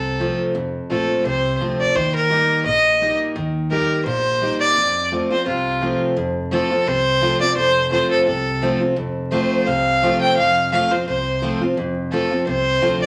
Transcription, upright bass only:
Already playing: C2
0.55 F1
0.90 A#1
1.25 C2
1.60 D2
1.95 D#2
2.65 A#1
3.35 D#2
4.05 A#1
4.76 F2
5.46 C2
6.16 F1
6.86 C2
7.56 F1
8.27 C2
8.97 F1
9.67 C2
10.37 F1
11.07 C2
11.77 F1
12.47 C2
12.82 D2

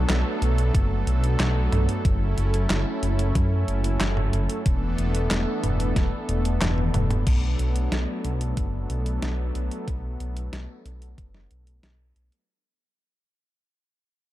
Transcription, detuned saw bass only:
0.09 B1
0.42 B1
0.75 F#1
1.07 B1
1.40 B1
1.72 B1
2.05 F#1
2.38 F#1
2.70 F#1
3.03 F#1
3.35 F#2
3.68 F#1
4.01 F#1
4.33 F#1
4.66 E1
4.98 E1
5.31 E1
5.64 E1
5.96 E1
6.29 E1
6.61 E1
6.94 E1
7.27 B1
7.60 B1
7.92 B1
8.25 B1
8.57 F#1
8.90 B1
9.23 B1
9.55 B1
9.88 B1
10.20 B1
10.53 B1
10.86 B1
11.18 F#1
11.51 B1
11.83 B1
12.16 B1

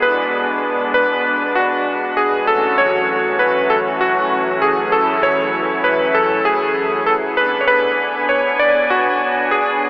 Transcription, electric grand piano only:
0.02 B4
0.94 B4
1.55 F#4
2.17 G#4
2.47 A4
2.78 C#5
3.39 B4
3.70 A4
4.01 F#4
4.62 G#4
4.92 A4
5.23 C#5
5.84 B4
6.15 A4
6.45 G#4
7.06 A4
7.37 B4
7.61 C#5
7.68 B4
8.29 C#5
8.59 D5
8.90 F#4
9.51 G#4

